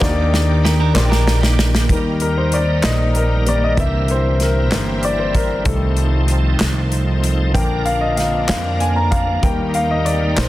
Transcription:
Already playing: A#3 C5 D5 F5
0.00 D#2 D#3 A#3 D4 D#4 F#4 G4 D5, kick, snare
0.10 G4
0.34 snare
0.65 A#3 G4, snare
0.80 D4 A#4
0.94 A#1 D#3 A#3 D#4 G4 C5 D5, snare, clap
1.04 G5
1.10 D4 A#4, snare
1.28 snare
1.41 A#3 G4, snare
1.59 snare
1.75 snare
1.89 D#2 D#3 G3 A#3 D#4 A#4, kick, closed hi-hat
2.20 A#4, closed hi-hat
2.38 C5
2.52 D5, closed hi-hat
2.83 A#1 D#5, snare, clap, closed hi-hat
3.15 A#4, closed hi-hat
3.47 D#3 G3 A#3 D5, closed hi-hat
3.64 D#5
3.77 C2 D3 E3 A#3 C4 E4 A#4 E5, kick, closed hi-hat
4.08 C5, closed hi-hat
4.40 A#4, snare, closed hi-hat
4.72 G1 D3 E3 A#3 C5, snare, clap, closed hi-hat
5.03 D5, closed hi-hat
5.20 C5
5.35 A#4, kick, closed hi-hat
5.64 C2 D#3 F3 G3 A3 D#4 A4, kick, closed hi-hat
5.97 closed hi-hat
6.28 closed hi-hat
6.60 C2, snare, clap, closed hi-hat
6.92 closed hi-hat
7.24 closed hi-hat
7.54 A#1 D3 F3 A#3 D4 A#4 G5, kick, closed hi-hat
7.85 F5, closed hi-hat
8.01 D#5
8.17 F5, snare, closed hi-hat
8.48 F2 F5, snare, clap, closed hi-hat
8.80 G#5, closed hi-hat
8.96 A#5
9.11 F5, kick, closed hi-hat
9.42 D#2 D#3 G3 A#3 D#4 G5, kick, closed hi-hat
9.74 F5, closed hi-hat
9.91 D#5
10.05 D5, closed hi-hat
10.37 A#1 C5, snare, clap, closed hi-hat

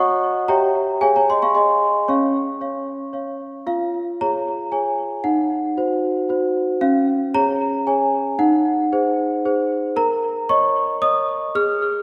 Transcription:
Already playing: F#4 C#5 D#5 A#5 C#6 D#6 F#6
0.00 F#5
0.48 G4 C#5 E5 G5 A#5
1.01 G#4 C#5 F5 G#5
1.16 C#5 A#5
1.30 D#5 C6
1.42 F5 C#6
1.55 G#4 D#5 G#5 C6
2.08 C#4 C#5 F5 C#6
2.61 C#5 F5
3.13 C#5 F5
3.67 F4 F5
4.21 G#4 C#5 A#5
4.72 G#4 C#5 G#5
5.24 D#4 F#5
5.77 F#4 C5
6.29 F#4 C5
6.81 C#4 F5
7.34 G#4 C#5 A#5
7.87 G#4 C#5 G#5
8.39 D#4 F#5
8.93 G#4 C5
9.45 G#4 C5
9.96 A#4 A#5
10.49 C#5 D#5 C#6
11.02 C#5 D#5 D#6
11.55 G#4 F6

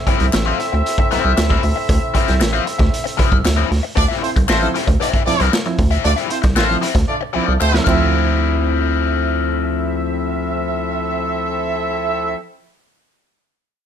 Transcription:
Already playing: C4 E4 A4 E5
0.07 F3 C4 E4, kick, closed hi-hat
0.20 C2, closed hi-hat
0.33 A1, muted overdriven electric guitar stroke, snare, clap, closed hi-hat
0.46 F3 C4 F4
0.59 muted overdriven electric guitar stroke, snare, closed hi-hat
0.73 D2, muted overdriven electric guitar stroke
0.86 closed hi-hat
0.98 muted overdriven electric guitar stroke, kick
1.11 C2 F3 C4 E4, snare, closed hi-hat
1.24 C2, muted overdriven electric guitar stroke
1.37 D2, muted overdriven electric guitar stroke, snare, clap, closed hi-hat
1.50 F3 C4 E4, kick, snare
1.62 D2, muted overdriven electric guitar stroke, open hi-hat
1.76 muted overdriven electric guitar stroke
1.89 D2, kick, closed hi-hat
2.14 F3 C4 E4, kick, closed hi-hat
2.28 C2, snare, closed hi-hat
2.40 A1, muted overdriven electric guitar stroke, snare, clap, closed hi-hat
2.53 F3 C4 F4
2.66 muted overdriven electric guitar stroke, closed hi-hat
2.79 D2, muted overdriven electric guitar stroke, kick, snare
2.94 closed hi-hat
3.04 muted overdriven electric guitar stroke, closed hi-hat
3.17 C2 F3 C4 E4, kick, closed hi-hat
3.31 C2, muted overdriven electric guitar stroke, kick
3.45 D2, muted overdriven electric guitar stroke, snare, clap, closed hi-hat
3.56 F3 C4 E4
3.70 D2, muted overdriven electric guitar stroke, snare, open hi-hat
3.83 muted overdriven electric guitar stroke
3.95 D2 D3 A3 D4 F4 D5, muted overdriven electric guitar stroke, kick, closed hi-hat
4.08 F3 C4 E4, snare
4.22 A3 C4 E4 F4 C5, muted overdriven electric guitar stroke, closed hi-hat
4.36 C2, muted overdriven electric guitar stroke, kick, closed hi-hat
4.47 A1 D3 F3 A3 C4 E4 F4 C5, snare, clap
4.61 F3 C4 E4, muted overdriven electric guitar stroke, closed hi-hat
4.75 F3 C4 E4, snare, closed hi-hat
4.87 D2, muted overdriven electric guitar stroke, kick, closed hi-hat
4.99 D3 F3 A3 C4 D4 E4 F4 D5, closed hi-hat
5.14 kick, closed hi-hat
5.25 C2 F3 A3 C4 D4 E4 F4 D5, muted overdriven electric guitar stroke, snare, closed hi-hat
5.40 C2 F3 C4 E4, closed hi-hat
5.53 muted overdriven electric guitar stroke, snare, clap
5.66 F3 C4 E4, muted overdriven electric guitar stroke, snare, closed hi-hat
5.78 D2, kick, open hi-hat
5.91 D3 F3 C4 E4, closed hi-hat
6.04 D2 D3 A3 D4 F4 D5, muted overdriven electric guitar stroke, closed hi-hat
6.16 F3 C4 E4, closed hi-hat
6.30 A3 C4 E4 F4 C5, muted overdriven electric guitar stroke, closed hi-hat
6.42 C2, muted overdriven electric guitar stroke, kick, snare, closed hi-hat
6.56 A1 D3 F3 A3 C4 E4 F4 C5, snare, clap
6.69 F3 C4 E4, muted overdriven electric guitar stroke, closed hi-hat
6.81 F3 C4 E4, closed hi-hat
6.95 D2, muted overdriven electric guitar stroke, kick, snare, closed hi-hat
7.08 D3 A3 D4 F4 D5
7.21 muted overdriven electric guitar stroke
7.33 C2 F3 A3 C4 D4 E4 F4 D5
7.46 C2 C4 E4, muted overdriven electric guitar stroke
7.60 D2 A3 C4 F4 C5, muted overdriven electric guitar stroke, clap
7.73 F3 C4 E4, muted overdriven electric guitar stroke, snare
7.84 D2 F3 C4 E4 A4 E5, kick, clap, crash
7.90 E4

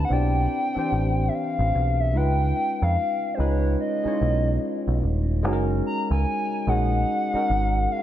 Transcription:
Already playing: C4 D4 E4 G4 B4
0.05 C4 F#5
0.10 B1 D4 E4 G4 D5 G5
0.75 E3 C4 D4 G4 C5, muted picked electric bass stroke
0.93 A1
1.28 E5
1.34 F5
1.59 A1
1.75 B1
2.00 E5
2.14 C#2 G#3 C#4 D#4 F4 B4 G5
2.82 F2 F5
3.34 G#3 C#4 C5
3.39 C#2 D#4 F4 B4 C#5
3.80 D#5
4.04 G#3 C#4 D#4 E4, muted picked electric bass stroke
4.08 C#5
4.13 F4
4.21 B1
4.88 B1
5.03 D#1
5.43 F#1 G#3 C#4 D#4 F#4 G#4
5.53 A#4
5.86 A#5
6.11 C#2 G#5
6.67 A#1 G#3 C#4 D#4 F#4 G#4 F#5
7.33 G#3 C#4 D#4 F#4 A#4, muted picked electric bass stroke
7.50 G#1
7.92 F5

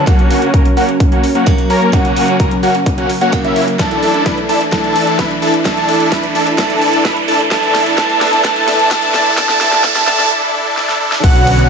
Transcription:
Already playing: C#4, riser
0.06 C#3 F#3 A#3 C#4 F#4 A#4 F#5, kick, closed hi-hat
0.19 closed hi-hat
0.31 open hi-hat
0.42 closed hi-hat
0.54 A#3 C#4 A#4 A#5, kick, closed hi-hat
0.65 closed hi-hat
0.77 A#3 C#4 F#4 F#5, open hi-hat
0.89 closed hi-hat
1.00 kick, closed hi-hat
1.12 A#3 C#4 F#4 F#5, closed hi-hat
1.24 open hi-hat
1.35 A#3 C#4 F#4 F#5, closed hi-hat
1.46 C#3 F#3 A#3 F#4, kick, closed hi-hat
1.58 closed hi-hat
1.70 A#3 C#4 A#4 A#5, open hi-hat
1.82 closed hi-hat
1.92 C#3 F#3 A#3 C#4 F#4 F#5, kick, closed hi-hat
2.05 closed hi-hat
2.16 open hi-hat
2.28 closed hi-hat
2.40 A#3 C#4 A#4 A#5, kick, closed hi-hat
2.51 closed hi-hat
2.63 A#3 C#4 F#4 F#5, open hi-hat
2.75 closed hi-hat
2.86 kick, closed hi-hat
2.98 A#3 C#4 F#4 F#5, closed hi-hat
3.09 open hi-hat
3.21 A#3 C#4 F#4 F#5, closed hi-hat
3.32 C#3 F#3 A#3 F#4, kick, closed hi-hat
3.44 A#3 C#4 E4 E5, closed hi-hat
3.56 open hi-hat
3.68 closed hi-hat
3.78 E3 A3 D4 E4 A4 A5, kick, snare, closed hi-hat
3.91 closed hi-hat
4.03 open hi-hat
4.14 closed hi-hat
4.26 D4 E4 B4 B5, kick, snare, closed hi-hat
4.37 closed hi-hat
4.49 D4 E4 A4 A5, open hi-hat
4.61 closed hi-hat
4.71 E3 A3 D4 E4 A4 A5, kick, snare, closed hi-hat
4.84 closed hi-hat
4.96 open hi-hat
5.07 closed hi-hat
5.19 D4 E4 B4 B5, kick, snare, closed hi-hat
5.31 closed hi-hat
5.42 D4 E4 A4 A5, open hi-hat
5.54 closed hi-hat
5.64 E3 A3 D4 E4 A4 A5, kick, snare, closed hi-hat
5.77 closed hi-hat
5.89 open hi-hat
6.00 closed hi-hat
6.12 D4 E4 B4 B5, kick, snare, closed hi-hat
6.23 closed hi-hat
6.35 D4 E4 A4 A5, open hi-hat
6.47 closed hi-hat
6.57 E3 A3 D4 E4 A4 A5, kick, snare, closed hi-hat
6.70 closed hi-hat
6.82 open hi-hat
6.93 closed hi-hat
7.05 D4 E4 B4 B5, kick, snare, closed hi-hat
7.16 closed hi-hat
7.28 D4 E4 A4 A5, open hi-hat
7.40 closed hi-hat
7.50 E3 A3 B3 D4 E4 A4 A5, kick, snare, closed hi-hat
7.63 closed hi-hat
7.75 snare, open hi-hat
7.86 closed hi-hat
7.97 E3 A3 D4 E4 A4 A5, kick, snare, closed hi-hat
8.10 closed hi-hat
8.21 snare, open hi-hat
8.33 closed hi-hat
8.43 E3 A3 D4 E4 A4 A5, kick, snare, closed hi-hat
8.56 closed hi-hat
8.68 snare, open hi-hat
8.79 closed hi-hat
8.90 E3 A3 D4 E4 A4 A5, kick, snare, closed hi-hat
9.03 closed hi-hat
9.14 snare, open hi-hat
9.26 closed hi-hat
9.36 E3 A3 D4 E4 G4 A4 A5, kick, snare, closed hi-hat
9.49 snare, closed hi-hat
9.60 E3 A3 D4 E4 A4 A5, snare, open hi-hat
9.73 snare, closed hi-hat
9.83 E3 A3 D4 E4 A4 A5, kick, snare, closed hi-hat
9.96 snare, closed hi-hat
10.06 E3 A3 D4 E4 A4 A5, snare, open hi-hat
10.19 snare, closed hi-hat
10.31 D4 E4 A4
10.54 D4 E4 A4
10.77 D4 E4 A4, snare
10.89 snare
11.00 D4 E4 A4
11.12 snare
11.24 B1 D3 F#3 B3 C#4 F#4 B4 F#5, kick, closed hi-hat, crash
11.35 closed hi-hat
11.47 open hi-hat
11.59 closed hi-hat

